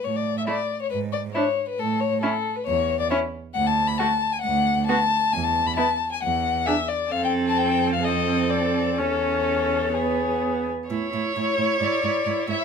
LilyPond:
<<
  \new Staff \with { instrumentName = "Violin" } { \time 4/4 \key a \mixolydian \tempo 4 = 134 cis''16 d''8 e''16 d''8. cis''16 b'8 d''8 cis''8. b'16 | a'8 cis''8 a'8. b'16 cis''8. d''16 cis''8 r8 | \key a \major fis''16 a''8 b''16 a''8. gis''16 fis''4 a''4 | gis''16 a''8 b''16 a''8. gis''16 fis''4 e''8 d''8 |
f''16 g''8 a''16 g''8. f''16 dis''4 d''4 | cis''2. r4 | r4 cis''4 d''4. e''8 | }
  \new Staff \with { instrumentName = "Violin" } { \time 4/4 \key a \mixolydian r4 e'4 r4 e'4 | r4 e'4 r4 e'4 | \key a \major r4 fis'4 r4 fis'4 | r4 e'4 r4 gis'4 |
a'2 a'2 | a'2 gis'4. r8 | cis''1 | }
  \new Staff \with { instrumentName = "Viola" } { \time 4/4 \key a \mixolydian r4 a4 r4 d'4 | r4 cis'4 r4 cis'4 | \key a \major r4 a4 r4 b4 | r4 b4 r4 d'4 |
c'2 c'2 | cis'2 b4. r8 | e'8 e'8 e'8 e'8 e'8 e'8 e'8 e'8 | }
  \new Staff \with { instrumentName = "Cello" } { \clef bass \time 4/4 \key a \mixolydian a,4 r4 gis,4 r4 | a,4 r4 e,4 r4 | \key a \major d,4 r4 d,4 r4 | e,4 r4 e,4 r4 |
f,1 | e,2.~ e,8 r8 | a,8 a,8 a,8 a,8 gis,8 gis,8 gis,8 gis,8 | }
>>